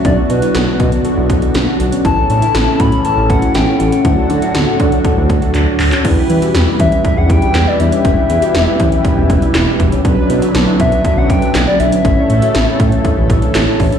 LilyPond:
<<
  \new Staff \with { instrumentName = "Soft synth lead" } { \time 4/4 \key e \dorian \tempo 4 = 120 d''8 b'4 r2 r8 | a''8 a''4 b''8 a''8 fis''8 g''8 fis''8~ | fis''2.~ fis''8 r8 | r4. e''8 e''16 fis''16 g''8. d''16 e''8~ |
e''2~ e''8 r4. | r4. e''8 e''16 fis''16 g''8. d''16 e''8~ | e''2~ e''8 r4. | }
  \new Staff \with { instrumentName = "Analog polysynth" } { \time 4/4 \key e \dorian <b d' fis'>1 | <cis' e' a'>1 | <d' fis' a'>1 | <e' g' b'>1~ |
<e' g' b'>1 | <fis d' b'>1 | <e' a' cis''>1 | }
  \new Staff \with { instrumentName = "Synth pluck" } { \time 4/4 \key e \dorian e'8 d'16 e'8 e'16 fis'8 a'16 e'8 fis'16 d'8 d'16 cis'16 | e'8 d'16 e'8 e'16 fis'8 a'16 e'8 fis'16 e'8 e'16 cis'16 | e'8 d'16 e'8 e'16 fis'8 a'16 e'8 fis'16 d'8 d'16 cis'16 | d'8 e'16 fis'8 e'16 cis'8 d'16 cis'8 d'16 e'8 d'16 cis'16 |
d'8 e'16 fis'8 e'16 cis'8 d'16 cis'8 d'16 e'8 d'16 cis'16 | d'8 e'16 fis'8 e'16 cis'8 d'16 cis'8 d'16 e'8 d'16 cis'16 | cis'8 e'16 fis'8 e'16 cis'8 d'16 cis'8 d'16 e'8 d'16 cis'16 | }
  \new Staff \with { instrumentName = "Analog synth pad" } { \clef bass \time 4/4 \key e \dorian << { <d fis d' fis'>1 | <cis e cis' e'>1 | <d fis d' fis'>1 | <e g e' g'>1~ |
<e g e' g'>1 | <d fis d'>1 | <e a e' a'>1 | } \\ { b,1 | a,1~ | a,1 | b,1~ |
b,1~ | b,1 | cis1 | } >> }
  \new Staff \with { instrumentName = "Analog synth bass" } { \clef bass \time 4/4 \key e \dorian b,,16 r16 b,16 r16 b,,16 r16 b,16 r8 b,,16 b,,16 r16 b,,16 r16 b,,16 r16 | a,,16 r16 a,16 r16 a,,16 r16 a,16 r8 a,,16 a,,16 r16 a,,16 r16 a,,16 r16 | d,16 r16 d16 r16 d,16 r16 d16 r8 d,16 d,16 r16 d,16 r16 d,16 r16 | e,16 r16 e16 r16 e,16 r16 e16 r8 e,16 e,16 r16 e,16 r16 e,16 r16 |
e,,16 r16 e,16 r16 e,,16 r16 e,16 r8 e,,16 e,,16 r16 e,,16 r16 e,,16 r16 | b,,16 r16 b,16 r16 b,,16 r16 b,16 r8 b,,16 b,,16 r16 b,,16 r16 b,,16 r16 | a,,16 r16 a,16 r16 a,,16 r16 a,16 r8 a,,16 a,,16 r16 a,,16 r16 a,,16 r16 | }
  \new DrumStaff \with { instrumentName = "Drums" } \drummode { \time 4/4 <hh bd>8 hh16 hh16 <hh sn>8 <hh bd>16 hh16 hh8 <hh bd>16 hh16 <hh sn>8 hh16 hh16 | <hh bd>8 hh16 hh16 <hh sn>8 <hh bd>16 hh16 hh8 <hh bd>16 hh16 <hh sn>8 hh16 hh16 | <hh bd>8 hh16 hh16 <hh sn>8 <hh bd>16 hh16 <hh bd>8 <hh bd>16 hh16 <hc hh>8 <hc hho>16 <hc hh>16 | <cymc hh bd>8 hh16 hh16 <hh sn>8 <hh bd>16 hh16 <hh bd>8 <hh bd>16 hh16 <hc hh sn>8 hh16 hh16 |
<hh bd>8 hh16 hh16 <hh sn>8 <hh bd>16 hh16 <hh bd>8 <hh bd>16 hh16 <hc hh sn>8 <hh bd>16 hh16 | <hh bd>8 hh16 hh16 <hh sn>8 <hh bd>16 hh16 <hh bd>8 <hh bd>16 hh16 <hc hh sn>8 hh16 hh16 | <hh bd>8 hh16 hh16 <hh sn>8 <hh bd>16 hh16 <hh bd>8 <hh bd>16 hh16 <hc hh sn>8 <hho bd>16 hh16 | }
>>